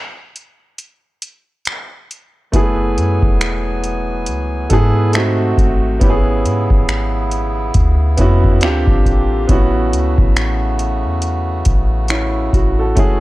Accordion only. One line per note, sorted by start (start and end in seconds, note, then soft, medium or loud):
2.53 5.11 E3 medium
2.53 5.11 F#3 medium
2.53 5.11 B3 medium
2.53 5.11 G#5 medium
5.13 6.00 C3 medium
5.13 6.00 A3 medium
5.13 6.00 F#4 medium
6.01 8.59 C#3 medium
6.01 8.59 B3 medium
6.01 8.59 E4 medium
8.62 9.48 D3 medium
8.62 9.48 A#3 medium
8.62 9.48 G4 medium
9.49 12.93 C#3 medium
9.49 13.20 A3 medium
9.49 13.20 F#4 medium
12.97 13.20 E3 medium